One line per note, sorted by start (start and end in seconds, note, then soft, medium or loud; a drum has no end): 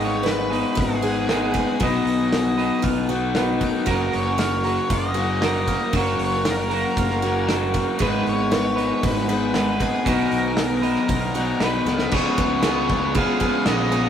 0.00 0.63 G#1 medium
0.00 0.49 G#2 medium
0.00 1.01 G#2 loud
0.00 0.50 D#3 medium
0.00 1.02 D#3 loud
0.00 0.50 G#3 medium
0.00 1.02 G#3 medium
0.00 0.52 B3 loud
0.00 1.02 B3 loud
0.00 0.51 D#4 loud
0.00 1.01 D#4 loud
0.00 0.25 G#4 medium
0.00 0.49 G#4 loud
0.00 3.83 B4 medium
0.00 1.77 F#5 medium
0.00 1.79 G#5 medium
0.00 3.83 D#6 medium
0.00 open hi-hat medium
0.04 0.29 C#5 loud
0.23 1.54 B4 medium
0.23 snare loud
0.23 open hi-hat medium
0.29 0.81 B4 medium
0.50 1.28 D#3 medium
0.50 1.28 G#3 medium
0.50 1.28 B3 medium
0.50 1.27 D#4 medium
0.50 1.27 G#4 medium
0.50 open hi-hat medium
0.55 1.27 G#2 medium
0.75 1.63 G#1 loud
0.75 1.02 F#4 medium
0.75 kick loud
0.75 open hi-hat medium
0.80 1.85 G#4 loud
1.02 1.26 G#2 medium
1.02 1.27 D#3 medium
1.02 1.28 G#3 medium
1.02 1.27 B3 medium
1.02 1.27 D#4 medium
1.02 1.53 G#4 medium
1.02 open hi-hat medium
1.27 1.78 G#2 medium
1.27 1.79 G#2 medium
1.27 1.79 D#3 medium
1.27 1.79 G#3 medium
1.27 1.79 B3 medium
1.27 1.80 B3 medium
1.27 1.80 D#4 medium
1.27 snare loud
1.27 open hi-hat medium
1.32 1.80 G#4 medium
1.54 1.79 B4 medium
1.54 kick medium
1.54 open hi-hat medium
1.80 2.02 B1 loud
1.80 3.08 B2 loud
1.80 2.57 B2 medium
1.80 2.57 D#3 medium
1.80 3.11 F#3 loud
1.80 2.59 F#3 loud
1.80 3.09 B3 loud
1.80 2.58 B3 medium
1.80 3.09 D#4 loud
1.80 2.57 D#4 medium
1.80 2.82 F#4 medium
1.80 2.81 D#5 loud
1.80 3.86 F#5 medium
1.80 3.86 A#5 medium
1.80 kick loud
1.80 open hi-hat medium
1.85 2.56 B4 loud
2.05 2.70 B1 medium
2.05 open hi-hat medium
2.33 snare loud
2.33 open hi-hat medium
2.58 3.34 B2 medium
2.58 3.35 D#3 medium
2.58 3.36 F#3 medium
2.58 3.35 B3 medium
2.58 3.34 D#4 medium
2.58 3.34 B4 medium
2.58 open hi-hat medium
2.82 3.70 B1 medium
2.82 3.09 F4 medium
2.82 kick loud
2.82 open hi-hat medium
3.09 3.33 B2 medium
3.09 3.35 F#3 medium
3.09 3.35 B3 medium
3.09 3.34 D#4 medium
3.09 3.86 F#4 medium
3.09 open hi-hat soft
3.34 3.85 B2 medium
3.34 3.86 B2 medium
3.34 3.86 D#3 medium
3.34 3.87 F#3 medium
3.34 3.86 B3 medium
3.34 3.87 B3 medium
3.34 3.87 D#4 medium
3.34 snare loud
3.34 open hi-hat medium
3.39 3.87 D#4 medium
3.39 3.88 B4 medium
3.61 4.38 A#4 medium
3.61 kick medium
3.61 open hi-hat medium
3.86 4.09 F#1 loud
3.86 5.14 F#2 medium
3.86 5.15 C#3 medium
3.86 4.67 F#3 medium
3.86 5.17 F#3 medium
3.86 5.15 A#3 medium
3.86 4.67 C#4 medium
3.86 5.14 C#4 loud
3.86 4.93 F#4 medium
3.86 4.65 F#4 medium
3.86 4.14 A#4 medium
3.86 7.97 A#4 medium
3.86 7.97 F5 medium
3.86 12.10 F#5 medium
3.86 7.97 C#6 medium
3.86 kick loud
3.86 open hi-hat medium
3.91 4.64 A#4 loud
4.13 4.77 F#1 medium
4.13 4.38 C#5 medium
4.13 open hi-hat medium
4.38 5.68 A#4 medium
4.38 4.88 C#5 loud
4.38 snare loud
4.38 open hi-hat medium
4.64 5.41 F#3 medium
4.64 5.42 C#4 medium
4.64 5.44 F#4 medium
4.64 5.41 A#4 medium
4.64 open hi-hat medium
4.90 5.76 F#1 loud
4.90 5.16 F4 medium
4.90 5.98 D#5 loud
4.90 kick loud
4.90 open hi-hat medium
5.14 5.42 C#3 medium
5.14 5.44 F#3 medium
5.14 5.41 A#3 medium
5.14 5.40 C#4 medium
5.14 5.93 F#4 medium
5.14 open hi-hat medium
5.19 5.40 F#2 medium
5.41 5.92 F#2 medium
5.41 5.93 C#3 medium
5.41 5.93 F#3 medium
5.41 5.95 F#3 medium
5.41 5.93 A#3 medium
5.41 5.93 C#4 medium
5.41 5.94 C#4 medium
5.41 5.96 F#4 medium
5.41 5.94 A#4 medium
5.41 snare loud
5.41 open hi-hat medium
5.67 5.93 A#4 medium
5.67 kick medium
5.67 open hi-hat medium
5.93 6.15 F#1 loud
5.93 7.21 F#2 loud
5.93 7.22 C#3 medium
5.93 6.73 F#3 medium
5.93 7.24 F#3 loud
5.93 7.22 A#3 loud
5.93 6.70 C#4 medium
5.93 7.22 C#4 loud
5.93 6.45 F#4 medium
5.93 6.71 F#4 medium
5.93 6.20 C#5 loud
5.93 kick loud
5.93 open hi-hat medium
5.98 6.69 A#4 medium
6.19 6.83 F#1 medium
6.19 open hi-hat medium
6.24 6.46 C#5 medium
6.45 6.97 A#4 medium
6.45 snare loud
6.45 open hi-hat medium
6.51 7.47 A#4 medium
6.70 7.47 F#3 medium
6.70 7.47 C#4 medium
6.70 7.49 F#4 medium
6.70 7.47 A#4 medium
6.70 open hi-hat medium
6.97 7.83 F#1 loud
6.97 7.22 F4 medium
6.97 kick loud
6.97 open hi-hat medium
7.10 snare soft
7.22 7.46 F#2 medium
7.22 7.47 C#3 medium
7.22 7.49 F#3 medium
7.22 7.48 A#3 medium
7.22 7.47 C#4 medium
7.22 8.02 F#4 medium
7.22 open hi-hat medium
7.47 7.98 F#2 medium
7.47 7.99 C#3 medium
7.47 8.00 F#3 medium
7.47 8.01 F#3 medium
7.47 7.99 A#3 medium
7.47 7.99 C#4 medium
7.47 8.00 C#4 medium
7.47 8.01 F#4 medium
7.47 8.00 A#4 medium
7.47 snare loud
7.47 open hi-hat medium
7.74 7.98 A#4 medium
7.74 kick medium
7.74 open hi-hat medium
7.99 8.22 G#1 loud
7.99 8.75 G#2 loud
7.99 9.27 G#2 loud
7.99 8.76 D#3 medium
7.99 9.28 D#3 loud
7.99 8.76 G#3 medium
7.99 9.28 G#3 loud
7.99 8.77 B3 medium
7.99 9.30 B3 loud
7.99 8.77 D#4 medium
7.99 8.51 G#4 loud
7.99 8.75 B4 loud
7.99 10.06 G#5 medium
7.99 12.10 D#6 medium
7.99 kick loud
7.99 open hi-hat medium
8.03 12.10 B3 medium
8.03 9.28 D#4 loud
8.03 8.29 B4 loud
8.27 8.91 G#1 medium
8.27 8.52 C#5 loud
8.27 open hi-hat medium
8.51 9.81 B4 medium
8.51 9.05 C#5 loud
8.51 snare loud
8.51 open hi-hat medium
8.76 9.53 G#2 medium
8.76 9.54 D#3 medium
8.76 9.54 G#3 medium
8.76 9.56 B3 medium
8.76 9.53 D#4 medium
8.76 9.57 B4 medium
8.76 open hi-hat medium
9.03 9.89 G#1 loud
9.03 9.29 F#4 medium
9.03 9.28 B4 loud
9.03 kick loud
9.03 open hi-hat medium
9.17 snare soft
9.29 9.52 G#2 medium
9.29 9.54 D#3 medium
9.29 9.54 G#3 medium
9.29 9.56 B3 medium
9.29 9.53 D#4 medium
9.29 9.80 G#4 medium
9.29 9.82 B4 loud
9.29 open hi-hat medium
9.54 10.04 G#2 medium
9.54 10.05 D#3 medium
9.54 10.04 D#3 medium
9.54 10.05 G#3 medium
9.54 10.06 G#3 medium
9.54 10.06 B3 medium
9.54 10.07 B3 medium
9.54 10.06 D#4 medium
9.54 10.08 B4 medium
9.54 snare loud
9.54 open hi-hat medium
9.80 10.08 G#4 medium
9.80 11.08 B4 medium
9.80 kick medium
9.80 open hi-hat medium
10.05 10.28 B1 loud
10.05 10.82 B2 loud
10.05 11.33 B2 medium
10.05 10.82 D#3 medium
10.05 11.34 D#3 loud
10.05 10.82 F#3 medium
10.05 11.34 F#3 loud
10.05 10.83 B3 loud
10.05 11.35 B3 loud
10.05 10.82 D#4 loud
10.05 11.35 D#4 loud
10.05 10.58 F#4 medium
10.05 11.84 A#4 medium
10.05 10.81 B4 loud
10.05 12.11 A#5 medium
10.05 kick loud
10.05 open hi-hat medium
10.31 10.96 B1 medium
10.31 open hi-hat medium
10.57 snare loud
10.57 open hi-hat medium
10.82 11.59 D#3 medium
10.82 11.60 F#3 medium
10.82 11.60 B3 medium
10.82 11.59 D#4 medium
10.82 11.59 B4 medium
10.82 open hi-hat medium
10.86 11.59 B2 medium
10.96 snare soft
11.08 11.52 B1 loud
11.08 11.35 F4 medium
11.08 kick loud
11.08 open hi-hat medium
11.34 11.61 D#3 medium
11.34 11.61 F#3 medium
11.34 11.61 B3 medium
11.34 11.60 D#4 medium
11.34 11.87 F#4 medium
11.34 open hi-hat medium
11.39 11.60 B2 medium
11.60 11.84 B1 medium
11.60 12.11 B2 medium
11.60 12.11 D#3 medium
11.60 12.12 D#3 medium
11.60 12.11 F#3 medium
11.60 12.12 F#3 medium
11.60 12.12 B3 medium
11.60 12.13 B3 medium
11.60 12.12 D#4 medium
11.60 12.13 D#4 medium
11.60 12.15 B4 medium
11.60 12.13 B4 medium
11.60 snare loud
11.60 open hi-hat medium
11.85 12.09 C#2 medium
11.85 12.13 A#4 medium
11.85 snare medium
11.98 snare medium
12.11 12.23 C#2 loud
12.11 12.90 C#3 medium
12.11 12.62 C#3 loud
12.11 12.62 F3 loud
12.11 12.41 G#3 loud
12.11 12.66 B3 loud
12.11 12.64 C#4 loud
12.11 14.09 G#4 medium
12.11 12.66 G#4 medium
12.11 13.12 C#5 loud
12.11 14.09 F5 medium
12.11 14.09 B5 medium
12.11 14.09 C#6 medium
12.11 kick loud
12.11 crash loud
12.11 crash medium
12.16 12.39 B3 loud
12.16 12.37 F4 loud
12.38 13.24 C#2 loud
12.38 12.64 G#3 medium
12.38 12.65 B3 medium
12.38 12.65 F4 medium
12.38 13.95 B4 medium
12.38 kick medium
12.38 crash medium
12.63 13.14 C#3 medium
12.63 13.15 F3 medium
12.63 12.92 G#3 medium
12.63 12.90 B3 medium
12.63 13.16 B3 medium
12.63 13.16 C#4 medium
12.63 12.88 F4 medium
12.63 13.15 G#4 medium
12.63 snare loud
12.63 crash medium
12.67 13.17 G#4 medium
12.89 13.15 G#3 medium
12.89 13.16 B3 medium
12.89 13.17 F4 medium
12.89 kick medium
12.89 crash medium
13.15 13.67 C#3 loud
13.15 13.66 C#3 medium
13.15 13.65 F3 loud
13.15 13.42 G#3 medium
13.15 13.41 B3 loud
13.15 13.42 B3 loud
13.15 13.43 C#4 medium
13.15 13.40 F4 medium
13.15 13.39 G#4 medium
13.15 13.40 G#4 loud
13.15 13.70 F5 loud
13.15 kick loud
13.15 crash medium
13.40 13.66 G#3 medium
13.40 13.68 B3 medium
13.40 13.67 B3 medium
13.40 13.68 F4 medium
13.40 13.91 G#4 medium
13.40 13.68 G#4 medium
13.40 kick medium
13.40 crash medium
13.44 13.67 C#4 medium
13.66 14.09 A#1 loud
13.66 14.09 C#3 medium
13.66 14.09 F3 medium
13.66 14.09 G#3 medium
13.66 14.09 B3 medium
13.66 13.92 B3 medium
13.66 13.94 C#4 medium
13.66 14.09 F4 medium
13.66 13.90 G#4 medium
13.66 14.09 D#5 loud
13.66 snare loud
13.66 crash medium
13.92 14.09 B3 medium
13.92 14.09 C#4 medium
13.92 14.09 G#4 medium
13.92 14.09 C#5 medium
13.92 crash medium